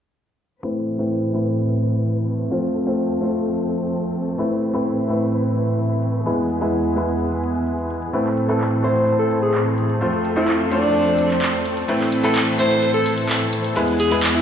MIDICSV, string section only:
0, 0, Header, 1, 2, 480
1, 0, Start_track
1, 0, Key_signature, 0, "minor"
1, 0, Tempo, 468750
1, 652, Time_signature, 4, 2, 24, 8
1, 14763, End_track
2, 0, Start_track
2, 0, Title_t, "String section"
2, 0, Program_c, 0, 48
2, 652, Note_on_c, 0, 45, 70
2, 652, Note_on_c, 0, 52, 71
2, 652, Note_on_c, 0, 60, 65
2, 652, Note_on_c, 0, 71, 78
2, 2553, Note_off_c, 0, 45, 0
2, 2553, Note_off_c, 0, 52, 0
2, 2553, Note_off_c, 0, 71, 0
2, 2573, Note_on_c, 0, 69, 77
2, 2574, Note_on_c, 0, 41, 72
2, 2574, Note_on_c, 0, 53, 68
2, 4474, Note_off_c, 0, 41, 0
2, 4474, Note_off_c, 0, 53, 0
2, 4474, Note_off_c, 0, 69, 0
2, 4492, Note_on_c, 0, 52, 65
2, 4493, Note_on_c, 0, 45, 74
2, 4494, Note_on_c, 0, 71, 84
2, 6371, Note_off_c, 0, 60, 0
2, 6394, Note_off_c, 0, 45, 0
2, 6394, Note_off_c, 0, 71, 0
2, 6411, Note_on_c, 0, 59, 67
2, 6411, Note_on_c, 0, 68, 81
2, 6412, Note_on_c, 0, 40, 72
2, 8313, Note_off_c, 0, 40, 0
2, 8313, Note_off_c, 0, 59, 0
2, 8313, Note_off_c, 0, 68, 0
2, 8331, Note_on_c, 0, 45, 76
2, 8332, Note_on_c, 0, 60, 71
2, 8332, Note_on_c, 0, 69, 78
2, 10212, Note_off_c, 0, 52, 0
2, 10233, Note_off_c, 0, 45, 0
2, 10233, Note_off_c, 0, 60, 0
2, 10233, Note_off_c, 0, 69, 0
2, 10251, Note_on_c, 0, 41, 75
2, 10251, Note_on_c, 0, 53, 71
2, 10251, Note_on_c, 0, 60, 68
2, 10251, Note_on_c, 0, 69, 87
2, 12153, Note_off_c, 0, 41, 0
2, 12153, Note_off_c, 0, 53, 0
2, 12153, Note_off_c, 0, 69, 0
2, 12173, Note_on_c, 0, 45, 75
2, 12173, Note_on_c, 0, 52, 70
2, 12173, Note_on_c, 0, 69, 89
2, 14054, Note_off_c, 0, 60, 0
2, 14074, Note_off_c, 0, 45, 0
2, 14074, Note_off_c, 0, 69, 0
2, 14093, Note_on_c, 0, 40, 80
2, 14093, Note_on_c, 0, 59, 73
2, 14093, Note_on_c, 0, 68, 86
2, 14763, Note_off_c, 0, 40, 0
2, 14763, Note_off_c, 0, 52, 0
2, 14763, Note_off_c, 0, 59, 0
2, 14763, Note_off_c, 0, 68, 0
2, 14763, End_track
0, 0, End_of_file